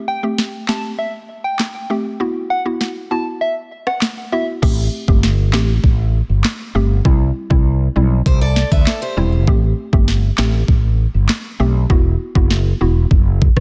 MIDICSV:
0, 0, Header, 1, 6, 480
1, 0, Start_track
1, 0, Tempo, 606061
1, 1745, Time_signature, 4, 2, 24, 8
1, 10772, End_track
2, 0, Start_track
2, 0, Title_t, "Soft synth lead"
2, 0, Program_c, 0, 80
2, 63, Note_on_c, 0, 79, 89
2, 169, Note_off_c, 0, 79, 0
2, 543, Note_on_c, 0, 81, 81
2, 649, Note_off_c, 0, 81, 0
2, 780, Note_on_c, 0, 76, 80
2, 887, Note_off_c, 0, 76, 0
2, 1143, Note_on_c, 0, 79, 76
2, 1249, Note_off_c, 0, 79, 0
2, 1982, Note_on_c, 0, 78, 85
2, 2088, Note_off_c, 0, 78, 0
2, 2464, Note_on_c, 0, 81, 78
2, 2569, Note_off_c, 0, 81, 0
2, 2701, Note_on_c, 0, 76, 84
2, 2808, Note_off_c, 0, 76, 0
2, 3065, Note_on_c, 0, 78, 71
2, 3170, Note_off_c, 0, 78, 0
2, 3425, Note_on_c, 0, 76, 80
2, 3530, Note_off_c, 0, 76, 0
2, 10772, End_track
3, 0, Start_track
3, 0, Title_t, "Steel-string acoustic guitar"
3, 0, Program_c, 1, 25
3, 6546, Note_on_c, 1, 72, 75
3, 6550, Note_on_c, 1, 67, 60
3, 6659, Note_off_c, 1, 72, 0
3, 6662, Note_off_c, 1, 67, 0
3, 6664, Note_on_c, 1, 74, 89
3, 6669, Note_on_c, 1, 69, 72
3, 6892, Note_off_c, 1, 74, 0
3, 6895, Note_off_c, 1, 69, 0
3, 6904, Note_on_c, 1, 76, 83
3, 6908, Note_on_c, 1, 71, 67
3, 7018, Note_off_c, 1, 76, 0
3, 7021, Note_off_c, 1, 71, 0
3, 7023, Note_on_c, 1, 74, 84
3, 7029, Note_on_c, 1, 69, 73
3, 7138, Note_off_c, 1, 74, 0
3, 7141, Note_off_c, 1, 69, 0
3, 7143, Note_on_c, 1, 72, 76
3, 7147, Note_on_c, 1, 67, 63
3, 7486, Note_off_c, 1, 72, 0
3, 7488, Note_off_c, 1, 67, 0
3, 10772, End_track
4, 0, Start_track
4, 0, Title_t, "Synth pluck"
4, 0, Program_c, 2, 84
4, 0, Note_on_c, 2, 57, 87
4, 0, Note_on_c, 2, 60, 79
4, 0, Note_on_c, 2, 67, 100
4, 155, Note_off_c, 2, 57, 0
4, 156, Note_off_c, 2, 60, 0
4, 157, Note_off_c, 2, 67, 0
4, 183, Note_on_c, 2, 57, 78
4, 185, Note_on_c, 2, 60, 72
4, 187, Note_on_c, 2, 67, 87
4, 515, Note_off_c, 2, 57, 0
4, 516, Note_off_c, 2, 60, 0
4, 517, Note_off_c, 2, 67, 0
4, 542, Note_on_c, 2, 57, 72
4, 543, Note_on_c, 2, 60, 67
4, 546, Note_on_c, 2, 67, 78
4, 764, Note_off_c, 2, 57, 0
4, 765, Note_off_c, 2, 60, 0
4, 766, Note_off_c, 2, 67, 0
4, 1503, Note_on_c, 2, 57, 80
4, 1506, Note_on_c, 2, 60, 70
4, 1508, Note_on_c, 2, 67, 89
4, 1643, Note_off_c, 2, 57, 0
4, 1644, Note_off_c, 2, 60, 0
4, 1645, Note_off_c, 2, 67, 0
4, 1742, Note_on_c, 2, 59, 87
4, 1744, Note_on_c, 2, 64, 77
4, 1746, Note_on_c, 2, 66, 95
4, 2074, Note_off_c, 2, 59, 0
4, 2075, Note_off_c, 2, 64, 0
4, 2077, Note_off_c, 2, 66, 0
4, 2102, Note_on_c, 2, 59, 74
4, 2104, Note_on_c, 2, 64, 69
4, 2106, Note_on_c, 2, 66, 82
4, 2435, Note_off_c, 2, 59, 0
4, 2435, Note_off_c, 2, 64, 0
4, 2437, Note_off_c, 2, 66, 0
4, 2462, Note_on_c, 2, 59, 72
4, 2464, Note_on_c, 2, 64, 66
4, 2467, Note_on_c, 2, 66, 79
4, 2684, Note_off_c, 2, 59, 0
4, 2685, Note_off_c, 2, 64, 0
4, 2687, Note_off_c, 2, 66, 0
4, 3424, Note_on_c, 2, 59, 81
4, 3426, Note_on_c, 2, 64, 72
4, 3429, Note_on_c, 2, 66, 85
4, 3563, Note_off_c, 2, 59, 0
4, 3564, Note_off_c, 2, 64, 0
4, 3566, Note_off_c, 2, 66, 0
4, 3661, Note_on_c, 2, 57, 88
4, 3663, Note_on_c, 2, 60, 81
4, 3664, Note_on_c, 2, 67, 99
4, 3994, Note_off_c, 2, 57, 0
4, 3995, Note_off_c, 2, 60, 0
4, 3996, Note_off_c, 2, 67, 0
4, 4023, Note_on_c, 2, 57, 75
4, 4024, Note_on_c, 2, 60, 70
4, 4028, Note_on_c, 2, 67, 86
4, 4355, Note_off_c, 2, 57, 0
4, 4356, Note_off_c, 2, 60, 0
4, 4357, Note_off_c, 2, 67, 0
4, 4380, Note_on_c, 2, 57, 75
4, 4383, Note_on_c, 2, 60, 71
4, 4386, Note_on_c, 2, 67, 81
4, 4603, Note_off_c, 2, 57, 0
4, 4605, Note_off_c, 2, 60, 0
4, 4606, Note_off_c, 2, 67, 0
4, 5345, Note_on_c, 2, 57, 79
4, 5347, Note_on_c, 2, 60, 72
4, 5350, Note_on_c, 2, 67, 86
4, 5483, Note_off_c, 2, 57, 0
4, 5484, Note_off_c, 2, 60, 0
4, 5486, Note_off_c, 2, 67, 0
4, 5582, Note_on_c, 2, 55, 87
4, 5585, Note_on_c, 2, 60, 85
4, 5588, Note_on_c, 2, 64, 98
4, 5915, Note_off_c, 2, 55, 0
4, 5916, Note_off_c, 2, 60, 0
4, 5917, Note_off_c, 2, 64, 0
4, 5940, Note_on_c, 2, 55, 79
4, 5943, Note_on_c, 2, 60, 68
4, 5946, Note_on_c, 2, 64, 87
4, 6274, Note_off_c, 2, 55, 0
4, 6275, Note_off_c, 2, 60, 0
4, 6276, Note_off_c, 2, 64, 0
4, 6302, Note_on_c, 2, 55, 75
4, 6305, Note_on_c, 2, 60, 67
4, 6307, Note_on_c, 2, 64, 82
4, 6524, Note_off_c, 2, 55, 0
4, 6526, Note_off_c, 2, 60, 0
4, 6526, Note_off_c, 2, 64, 0
4, 7262, Note_on_c, 2, 55, 80
4, 7265, Note_on_c, 2, 60, 73
4, 7267, Note_on_c, 2, 64, 92
4, 7402, Note_off_c, 2, 55, 0
4, 7403, Note_off_c, 2, 60, 0
4, 7405, Note_off_c, 2, 64, 0
4, 7503, Note_on_c, 2, 57, 87
4, 7505, Note_on_c, 2, 60, 80
4, 7507, Note_on_c, 2, 67, 100
4, 7835, Note_off_c, 2, 57, 0
4, 7836, Note_off_c, 2, 60, 0
4, 7837, Note_off_c, 2, 67, 0
4, 7863, Note_on_c, 2, 57, 82
4, 7865, Note_on_c, 2, 60, 72
4, 7868, Note_on_c, 2, 67, 85
4, 8195, Note_off_c, 2, 57, 0
4, 8196, Note_off_c, 2, 60, 0
4, 8197, Note_off_c, 2, 67, 0
4, 8222, Note_on_c, 2, 57, 74
4, 8225, Note_on_c, 2, 60, 68
4, 8228, Note_on_c, 2, 67, 82
4, 8444, Note_off_c, 2, 57, 0
4, 8445, Note_off_c, 2, 60, 0
4, 8447, Note_off_c, 2, 67, 0
4, 9184, Note_on_c, 2, 57, 78
4, 9185, Note_on_c, 2, 60, 73
4, 9188, Note_on_c, 2, 67, 89
4, 9323, Note_off_c, 2, 57, 0
4, 9324, Note_off_c, 2, 60, 0
4, 9325, Note_off_c, 2, 67, 0
4, 9422, Note_on_c, 2, 59, 89
4, 9425, Note_on_c, 2, 64, 85
4, 9428, Note_on_c, 2, 66, 101
4, 9755, Note_off_c, 2, 59, 0
4, 9756, Note_off_c, 2, 64, 0
4, 9757, Note_off_c, 2, 66, 0
4, 9782, Note_on_c, 2, 59, 80
4, 9785, Note_on_c, 2, 64, 70
4, 9787, Note_on_c, 2, 66, 85
4, 10115, Note_off_c, 2, 59, 0
4, 10116, Note_off_c, 2, 64, 0
4, 10117, Note_off_c, 2, 66, 0
4, 10144, Note_on_c, 2, 59, 74
4, 10146, Note_on_c, 2, 64, 65
4, 10148, Note_on_c, 2, 66, 81
4, 10365, Note_off_c, 2, 59, 0
4, 10366, Note_off_c, 2, 64, 0
4, 10367, Note_off_c, 2, 66, 0
4, 10772, End_track
5, 0, Start_track
5, 0, Title_t, "Fretless electric bass"
5, 0, Program_c, 3, 35
5, 3665, Note_on_c, 3, 33, 94
5, 3856, Note_off_c, 3, 33, 0
5, 4025, Note_on_c, 3, 31, 88
5, 4385, Note_off_c, 3, 31, 0
5, 4385, Note_on_c, 3, 33, 98
5, 4576, Note_off_c, 3, 33, 0
5, 4622, Note_on_c, 3, 33, 86
5, 4910, Note_off_c, 3, 33, 0
5, 4984, Note_on_c, 3, 31, 85
5, 5080, Note_off_c, 3, 31, 0
5, 5343, Note_on_c, 3, 31, 89
5, 5535, Note_off_c, 3, 31, 0
5, 5584, Note_on_c, 3, 36, 103
5, 5776, Note_off_c, 3, 36, 0
5, 5944, Note_on_c, 3, 36, 92
5, 6231, Note_off_c, 3, 36, 0
5, 6304, Note_on_c, 3, 35, 92
5, 6496, Note_off_c, 3, 35, 0
5, 6542, Note_on_c, 3, 36, 96
5, 6830, Note_off_c, 3, 36, 0
5, 6903, Note_on_c, 3, 38, 87
5, 6999, Note_off_c, 3, 38, 0
5, 7264, Note_on_c, 3, 28, 96
5, 7504, Note_off_c, 3, 28, 0
5, 7504, Note_on_c, 3, 33, 99
5, 7696, Note_off_c, 3, 33, 0
5, 7864, Note_on_c, 3, 31, 82
5, 8151, Note_off_c, 3, 31, 0
5, 8224, Note_on_c, 3, 33, 102
5, 8415, Note_off_c, 3, 33, 0
5, 8461, Note_on_c, 3, 33, 92
5, 8750, Note_off_c, 3, 33, 0
5, 8825, Note_on_c, 3, 31, 84
5, 8921, Note_off_c, 3, 31, 0
5, 9185, Note_on_c, 3, 35, 85
5, 9376, Note_off_c, 3, 35, 0
5, 9425, Note_on_c, 3, 28, 102
5, 9616, Note_off_c, 3, 28, 0
5, 9784, Note_on_c, 3, 30, 90
5, 10071, Note_off_c, 3, 30, 0
5, 10145, Note_on_c, 3, 28, 92
5, 10336, Note_off_c, 3, 28, 0
5, 10383, Note_on_c, 3, 30, 90
5, 10671, Note_off_c, 3, 30, 0
5, 10744, Note_on_c, 3, 31, 85
5, 10772, Note_off_c, 3, 31, 0
5, 10772, End_track
6, 0, Start_track
6, 0, Title_t, "Drums"
6, 304, Note_on_c, 9, 38, 63
6, 384, Note_off_c, 9, 38, 0
6, 543, Note_on_c, 9, 39, 84
6, 545, Note_on_c, 9, 38, 109
6, 622, Note_off_c, 9, 39, 0
6, 624, Note_off_c, 9, 38, 0
6, 1261, Note_on_c, 9, 39, 78
6, 1263, Note_on_c, 9, 38, 90
6, 1340, Note_off_c, 9, 39, 0
6, 1342, Note_off_c, 9, 38, 0
6, 2223, Note_on_c, 9, 38, 63
6, 2302, Note_off_c, 9, 38, 0
6, 3063, Note_on_c, 9, 37, 98
6, 3142, Note_off_c, 9, 37, 0
6, 3181, Note_on_c, 9, 39, 75
6, 3183, Note_on_c, 9, 38, 94
6, 3260, Note_off_c, 9, 39, 0
6, 3262, Note_off_c, 9, 38, 0
6, 3664, Note_on_c, 9, 36, 108
6, 3664, Note_on_c, 9, 49, 89
6, 3744, Note_off_c, 9, 36, 0
6, 3744, Note_off_c, 9, 49, 0
6, 4025, Note_on_c, 9, 36, 90
6, 4104, Note_off_c, 9, 36, 0
6, 4145, Note_on_c, 9, 38, 67
6, 4224, Note_off_c, 9, 38, 0
6, 4383, Note_on_c, 9, 39, 90
6, 4385, Note_on_c, 9, 38, 113
6, 4462, Note_off_c, 9, 39, 0
6, 4464, Note_off_c, 9, 38, 0
6, 4623, Note_on_c, 9, 36, 94
6, 4702, Note_off_c, 9, 36, 0
6, 5102, Note_on_c, 9, 39, 82
6, 5105, Note_on_c, 9, 38, 102
6, 5181, Note_off_c, 9, 39, 0
6, 5184, Note_off_c, 9, 38, 0
6, 5584, Note_on_c, 9, 36, 105
6, 5664, Note_off_c, 9, 36, 0
6, 5944, Note_on_c, 9, 36, 88
6, 6024, Note_off_c, 9, 36, 0
6, 6542, Note_on_c, 9, 36, 95
6, 6621, Note_off_c, 9, 36, 0
6, 6782, Note_on_c, 9, 38, 67
6, 6861, Note_off_c, 9, 38, 0
6, 6903, Note_on_c, 9, 36, 88
6, 6983, Note_off_c, 9, 36, 0
6, 7022, Note_on_c, 9, 39, 78
6, 7025, Note_on_c, 9, 38, 101
6, 7101, Note_off_c, 9, 39, 0
6, 7104, Note_off_c, 9, 38, 0
6, 7504, Note_on_c, 9, 36, 107
6, 7583, Note_off_c, 9, 36, 0
6, 7864, Note_on_c, 9, 36, 92
6, 7943, Note_off_c, 9, 36, 0
6, 7983, Note_on_c, 9, 38, 67
6, 8062, Note_off_c, 9, 38, 0
6, 8221, Note_on_c, 9, 39, 85
6, 8223, Note_on_c, 9, 38, 116
6, 8300, Note_off_c, 9, 39, 0
6, 8303, Note_off_c, 9, 38, 0
6, 8461, Note_on_c, 9, 36, 94
6, 8541, Note_off_c, 9, 36, 0
6, 8941, Note_on_c, 9, 39, 78
6, 8943, Note_on_c, 9, 38, 102
6, 9020, Note_off_c, 9, 39, 0
6, 9023, Note_off_c, 9, 38, 0
6, 9424, Note_on_c, 9, 36, 107
6, 9503, Note_off_c, 9, 36, 0
6, 9785, Note_on_c, 9, 36, 91
6, 9864, Note_off_c, 9, 36, 0
6, 9904, Note_on_c, 9, 38, 62
6, 9983, Note_off_c, 9, 38, 0
6, 10383, Note_on_c, 9, 36, 92
6, 10462, Note_off_c, 9, 36, 0
6, 10626, Note_on_c, 9, 36, 99
6, 10706, Note_off_c, 9, 36, 0
6, 10744, Note_on_c, 9, 36, 85
6, 10745, Note_on_c, 9, 37, 100
6, 10772, Note_off_c, 9, 36, 0
6, 10772, Note_off_c, 9, 37, 0
6, 10772, End_track
0, 0, End_of_file